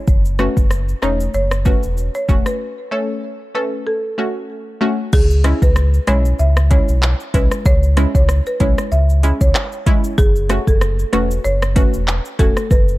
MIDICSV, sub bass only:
0, 0, Header, 1, 2, 480
1, 0, Start_track
1, 0, Key_signature, 4, "minor"
1, 0, Tempo, 631579
1, 58, Time_signature, 4, 2, 24, 8
1, 9866, End_track
2, 0, Start_track
2, 0, Title_t, "Sub bass"
2, 0, Program_c, 0, 38
2, 58, Note_on_c, 0, 30, 110
2, 366, Note_off_c, 0, 30, 0
2, 432, Note_on_c, 0, 30, 91
2, 716, Note_off_c, 0, 30, 0
2, 778, Note_on_c, 0, 28, 84
2, 976, Note_off_c, 0, 28, 0
2, 1018, Note_on_c, 0, 30, 106
2, 1326, Note_off_c, 0, 30, 0
2, 1393, Note_on_c, 0, 28, 90
2, 1590, Note_off_c, 0, 28, 0
2, 1737, Note_on_c, 0, 28, 88
2, 1848, Note_off_c, 0, 28, 0
2, 3899, Note_on_c, 0, 37, 114
2, 4206, Note_off_c, 0, 37, 0
2, 4271, Note_on_c, 0, 37, 97
2, 4556, Note_off_c, 0, 37, 0
2, 4619, Note_on_c, 0, 35, 96
2, 4816, Note_off_c, 0, 35, 0
2, 4859, Note_on_c, 0, 37, 110
2, 5167, Note_off_c, 0, 37, 0
2, 5234, Note_on_c, 0, 35, 92
2, 5431, Note_off_c, 0, 35, 0
2, 5579, Note_on_c, 0, 35, 102
2, 5689, Note_off_c, 0, 35, 0
2, 5819, Note_on_c, 0, 37, 112
2, 6127, Note_off_c, 0, 37, 0
2, 6193, Note_on_c, 0, 37, 100
2, 6390, Note_off_c, 0, 37, 0
2, 6539, Note_on_c, 0, 35, 96
2, 6649, Note_off_c, 0, 35, 0
2, 6777, Note_on_c, 0, 37, 99
2, 7085, Note_off_c, 0, 37, 0
2, 7152, Note_on_c, 0, 37, 88
2, 7239, Note_off_c, 0, 37, 0
2, 7738, Note_on_c, 0, 30, 112
2, 8046, Note_off_c, 0, 30, 0
2, 8112, Note_on_c, 0, 30, 97
2, 8397, Note_off_c, 0, 30, 0
2, 8458, Note_on_c, 0, 28, 82
2, 8655, Note_off_c, 0, 28, 0
2, 8699, Note_on_c, 0, 30, 107
2, 9007, Note_off_c, 0, 30, 0
2, 9073, Note_on_c, 0, 28, 89
2, 9270, Note_off_c, 0, 28, 0
2, 9418, Note_on_c, 0, 28, 90
2, 9529, Note_off_c, 0, 28, 0
2, 9658, Note_on_c, 0, 30, 110
2, 9866, Note_off_c, 0, 30, 0
2, 9866, End_track
0, 0, End_of_file